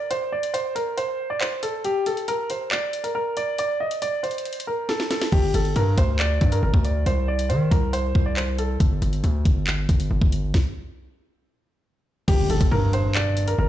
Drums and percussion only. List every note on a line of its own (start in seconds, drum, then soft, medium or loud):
0.11 closed hi-hat medium
0.43 closed hi-hat medium
0.54 closed hi-hat medium
0.76 closed hi-hat medium
0.98 closed hi-hat medium
1.41 clap loud
1.63 closed hi-hat medium
1.85 closed hi-hat medium
2.06 closed hi-hat medium
2.17 closed hi-hat soft
2.28 closed hi-hat medium
2.50 closed hi-hat medium
2.71 clap loud
2.93 closed hi-hat medium
3.04 closed hi-hat medium
3.37 closed hi-hat medium
3.58 closed hi-hat medium
3.91 closed hi-hat medium
4.02 closed hi-hat medium
4.24 closed hi-hat soft
4.31 closed hi-hat medium
4.38 closed hi-hat medium
4.45 closed hi-hat medium
4.53 closed hi-hat medium
4.60 closed hi-hat medium
4.89 snare medium
5.00 snare medium
5.11 snare medium
5.11 closed hi-hat medium
5.21 snare medium
5.32 kick loud
5.32 crash medium
5.54 closed hi-hat medium
5.65 closed hi-hat soft
5.76 closed hi-hat medium
5.98 kick medium
5.98 closed hi-hat medium
6.19 clap loud
6.41 kick medium
6.41 closed hi-hat medium
6.52 closed hi-hat medium
6.74 kick medium
6.85 closed hi-hat medium
7.06 closed hi-hat medium
7.39 closed hi-hat medium
7.50 closed hi-hat medium
7.72 kick medium
7.72 closed hi-hat medium
7.93 closed hi-hat medium
8.15 kick medium
8.37 clap loud
8.59 closed hi-hat medium
8.80 kick loud
8.80 closed hi-hat medium
9.02 closed hi-hat medium
9.13 closed hi-hat soft
9.24 closed hi-hat medium
9.45 kick medium
9.45 closed hi-hat medium
9.67 clap loud
9.89 kick medium
9.89 closed hi-hat medium
10.00 closed hi-hat medium
10.22 kick medium
10.32 closed hi-hat medium
10.54 kick loud
10.54 snare medium
12.28 kick loud
12.28 closed hi-hat medium
12.28 crash loud
12.50 closed hi-hat medium
12.61 kick medium
12.61 closed hi-hat medium
12.93 closed hi-hat medium
13.15 clap loud
13.37 closed hi-hat medium
13.48 closed hi-hat medium